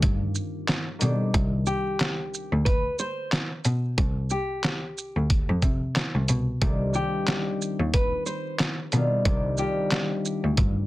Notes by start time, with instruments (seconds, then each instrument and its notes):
Already playing: harp D#3 G3 C4 D4 F4, nylon-string guitar G4
0.02 cello G2, kick, closed hi-hat
0.35 shaker
0.68 snare, clap, closed hi-hat
0.99 cello B2, harp D#3 G3 C4 D4 G4, closed hi-hat, shaker
1.34 cello C2, kick, closed hi-hat
1.66 nylon-string guitar G4, shaker
2.00 snare, clap, closed hi-hat
2.34 shaker
2.53 cello D2
2.65 nylon-string guitar B4, kick, closed hi-hat
2.99 nylon-string guitar C5, shaker
3.32 snare, clap, closed hi-hat
3.65 cello B2, closed hi-hat, shaker
3.98 cello C2, kick, closed hi-hat
4.30 nylon-string guitar G4, shaker
4.63 snare, clap, closed hi-hat
4.98 shaker
5.16 cello D2
5.30 kick, closed hi-hat
5.49 cello F2
5.62 cello C3, kick, closed hi-hat, shaker
5.96 snare, clap, closed hi-hat
6.15 cello C2
6.28 cello B2, closed hi-hat, shaker
6.61 cello C2, harp D#3 G3 C4 D4 G4, kick, closed hi-hat
6.93 harp D#3 G3 C4 D4 F4, nylon-string guitar G4, shaker
7.27 snare, clap, closed hi-hat
7.61 shaker
7.80 cello D#2
7.94 nylon-string guitar B4, kick, closed hi-hat
8.26 nylon-string guitar C5, shaker
8.59 snare, clap, closed hi-hat
8.92 cello B2, harp D#3 G3 C4 D4 F4, closed hi-hat, shaker
9.25 cello C2, harp D#3 G3 C4 D4 G4, kick, closed hi-hat
9.57 harp D#3 G3 C4 D4 F4, nylon-string guitar G4, shaker
9.91 snare, clap, closed hi-hat
10.25 shaker
10.44 cello D2
10.57 cello G2, kick, closed hi-hat